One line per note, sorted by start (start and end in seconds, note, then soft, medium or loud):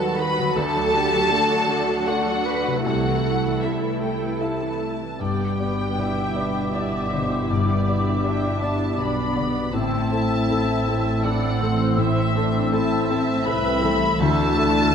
0.00 0.52 D#2 soft
0.00 0.26 D#3 soft
0.00 0.50 D#3 soft
0.00 0.19 F#3 medium
0.00 0.50 G3 medium
0.00 0.53 B3 medium
0.00 0.52 F#4 soft
0.00 0.54 F#4 medium
0.00 2.68 F#4 medium
0.00 0.18 A4 medium
0.00 0.52 B4 soft
0.00 0.57 B4 soft
0.00 2.17 F#5 soft
0.00 0.18 A5 medium
0.17 0.36 D#3 medium
0.17 0.55 B4 medium
0.17 0.55 B5 medium
0.38 2.79 D3 medium
0.38 0.56 F#3 medium
0.44 2.70 A3 medium
0.48 2.84 A4 soft
0.53 2.81 D2 medium
0.53 1.19 D2 medium
0.53 0.73 D3 medium
0.53 4.83 A3 medium
0.53 2.81 D4 medium
0.53 0.93 A4 medium
0.53 2.86 D5 medium
0.53 2.07 A5 loud
0.57 2.08 A4 medium
0.76 0.94 F#3 medium
0.94 1.13 D3 medium
0.94 1.31 G4 medium
1.13 1.31 F#3 medium
1.31 1.50 D3 medium
1.31 2.54 A3 medium
1.31 2.08 F#4 medium
1.50 1.69 F#3 medium
1.69 1.88 D3 medium
1.88 2.07 F#3 medium
2.06 2.26 D3 medium
2.06 2.83 F#4 medium
2.06 2.81 F#4 soft
2.06 2.46 A4 medium
2.06 2.81 D5 soft
2.06 2.83 F#5 medium
2.27 2.46 F#3 medium
2.46 2.65 D3 soft
2.46 2.85 B4 medium
2.65 5.14 C3 soft
2.65 2.85 F#3 soft
2.72 5.16 A3 soft
2.76 5.18 E4 soft
2.80 3.60 F#4 medium
2.80 5.21 E5 soft
2.84 5.16 C2 soft
2.84 3.50 C2 medium
2.84 3.03 C3 soft
2.84 4.95 E4 soft
2.84 4.83 E4 medium
2.84 4.76 A4 medium
2.84 3.60 F#5 medium
3.05 3.24 E3 soft
3.24 3.43 A3 soft
3.45 3.63 E3 soft
3.61 3.82 C3 soft
3.61 4.89 A3 soft
3.61 4.81 E4 soft
3.61 4.00 E5 medium
3.83 4.02 E3 soft
4.00 4.21 A3 soft
4.00 4.37 G5 soft
4.23 4.41 E3 soft
4.40 4.61 C3 soft
4.40 5.16 E4 soft
4.40 5.16 E5 soft
4.40 5.19 A5 medium
4.63 4.81 E3 soft
4.83 5.01 A3 soft
5.02 5.21 E3 soft
5.19 8.95 G1 soft
5.19 7.46 G2 soft
5.19 8.95 G2 soft
5.19 7.48 G2 soft
5.19 9.69 B2 soft
5.19 9.69 B3 soft
5.19 6.72 B3 soft
5.19 9.69 D4 soft
5.19 5.95 G4 soft
5.19 5.56 D5 soft
5.19 6.75 G5 medium
5.19 9.69 D6 soft
5.58 5.94 B3 soft
5.58 6.34 G4 soft
5.58 5.99 B4 soft
5.58 5.94 D5 soft
5.97 9.75 B2 soft
5.97 6.37 E4 soft
5.97 6.33 G4 soft
5.97 6.33 D5 soft
5.97 6.76 E5 medium
6.35 6.70 B3 soft
6.35 6.76 D4 soft
6.35 7.86 G4 soft
6.35 6.70 D5 soft
6.73 9.75 D4 soft
6.73 8.24 E4 soft
6.73 7.09 G4 soft
6.73 8.22 G4 soft
6.73 7.13 D5 soft
6.73 7.09 D5 soft
6.73 7.50 E5 medium
7.13 7.47 B2 soft
7.13 9.35 D3 soft
7.13 7.50 C5 soft
7.13 7.47 D5 soft
7.50 9.76 G2 soft
7.50 9.69 G2 soft
7.50 7.87 B4 soft
7.50 8.24 D5 medium
7.87 8.21 B3 soft
7.87 8.60 G4 soft
7.87 8.21 D5 soft
7.87 8.98 E5 soft
8.24 8.98 B3 soft
8.24 8.99 D4 soft
8.24 8.99 E4 soft
8.24 8.57 G4 soft
8.24 8.58 D5 soft
8.24 8.61 G5 medium
8.61 8.95 B3 soft
8.61 9.76 G4 soft
8.61 8.95 D5 soft
8.61 8.97 A5 medium
8.99 9.72 B1 soft
8.99 9.71 B2 soft
8.99 9.76 B3 soft
8.99 9.36 D4 soft
8.99 9.32 G4 soft
8.99 9.73 D5 soft
8.99 9.32 D5 soft
8.99 9.73 B5 medium
9.36 9.76 D3 soft
9.36 9.70 B3 soft
9.36 9.73 B3 soft
9.36 9.70 D5 soft
9.71 13.47 A1 soft
9.71 13.47 A2 medium
9.71 11.96 A2 soft
9.71 11.94 A2 soft
9.71 14.02 C4 soft
9.71 13.89 C4 soft
9.71 10.11 C4 soft
9.71 14.02 E4 soft
9.71 10.11 E4 soft
9.71 10.09 C5 soft
9.71 11.23 A5 medium
9.71 13.95 E6 soft
10.10 10.45 C4 soft
10.10 10.85 E4 soft
10.10 11.24 E4 soft
10.10 10.45 A4 soft
10.10 11.23 E5 medium
10.49 11.23 C4 soft
10.49 10.83 E4 soft
10.49 10.83 A4 soft
10.86 11.21 C4 soft
10.86 12.33 E4 soft
10.86 11.21 A4 soft
11.23 12.72 C4 soft
11.23 11.61 D4 medium
11.23 11.58 E4 soft
11.23 11.58 A4 soft
11.23 11.60 D5 medium
11.23 11.98 F#5 medium
11.61 13.82 E3 soft
11.61 11.98 C4 medium
11.61 11.94 C4 soft
11.61 11.95 A4 soft
11.61 12.73 C5 medium
11.97 14.23 A2 medium
11.97 14.16 A2 medium
11.97 12.34 E4 medium
11.97 12.73 E5 medium
12.35 12.69 C4 soft
12.35 12.72 D4 medium
12.35 13.08 E4 soft
12.35 12.70 A4 soft
12.72 13.45 C4 soft
12.72 13.47 C4 medium
12.72 13.06 E4 soft
12.72 13.06 A4 soft
12.72 14.95 E5 medium
12.72 13.08 A5 medium
13.09 13.43 C4 soft
13.09 14.56 E4 medium
13.09 13.43 A4 soft
13.09 13.46 A5 medium
13.44 14.21 C2 medium
13.44 14.21 C3 medium
13.44 14.23 C4 medium
13.44 13.79 E4 soft
13.44 13.80 A4 soft
13.44 13.84 B4 medium
13.44 14.19 B5 medium
13.83 14.23 E3 medium
13.83 14.19 A3 medium
13.83 14.17 C4 soft
13.83 14.17 A4 soft
14.19 14.95 D2 medium
14.19 14.95 D3 medium
14.19 14.93 A3 medium
14.19 14.95 D4 medium
14.19 14.95 E4 medium
14.19 14.93 F#4 medium
14.19 14.95 A5 loud
14.19 14.95 E6 medium
14.57 14.91 D4 soft
14.57 14.95 E4 medium
14.57 14.91 A4 soft